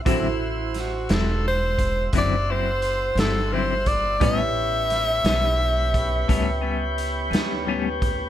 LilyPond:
<<
  \new Staff \with { instrumentName = "Tenor saxophone" } { \time 12/8 \key d \major \tempo 4. = 58 e'4 fis'8 a'8 c''4 d''8 c''4 a'8 c''8 d''8 | e''1~ e''4 r4 | }
  \new Staff \with { instrumentName = "Grand piano" } { \time 12/8 \key d \major <e' fis' a' c''>1. | <e' g' b' cis''>1. | }
  \new Staff \with { instrumentName = "Tonewheel organ" } { \time 12/8 \key d \major <fis' c'' e''>1. | <b cis' g'>1. | }
  \new Staff \with { instrumentName = "Clean electric guitar" } { \time 12/8 \key d \major <d fis c' e'>8 r4 <fis c' e'>8 r4 <d fis c' e'>8 <fis c' e'>8 r8 <fis c' e'>8 <d fis c' e'>8 r8 | <a, g b cis'>8 r4 <g b cis'>8 r4 <a, g b cis'>8 <g b cis'>8 r8 <g b cis'>8 <a, g b cis'>8 r8 | }
  \new Staff \with { instrumentName = "Upright bass" } { \clef bass \time 12/8 \key d \major a,,4. e,,4. fis,,4. g,,4. | a,,4. b,,4. cis,4. d,4. | }
  \new DrumStaff \with { instrumentName = "Drums" } \drummode { \time 12/8 <hh bd>4 <hh sn>8 <hh sn>4 <hh bd>8 <hh bd sn>4 hh8 <hh sn>4 <hh bd>8 | <hh bd>4 <hh sn>8 <hh sn>4 <hh bd>8 <hh bd>4 hh8 <hh sn>4 <hh bd>8 | }
>>